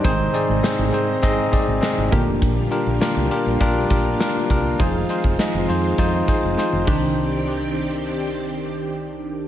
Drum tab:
RD |----------------|----------------|--------------x-|----------------|
HH |x-x-x-x-x-x-x-x-|x-x-x-x-x-x-x-x-|x-x-x-x-x-x-----|----------------|
SD |----o-------o---|----o-------o---|----o-------o---|----------------|
T1 |----------------|----------------|-------------o--|----------------|
BD |o-------o-o---o-|o-------o-o---o-|o--o----o-o---o-|----------------|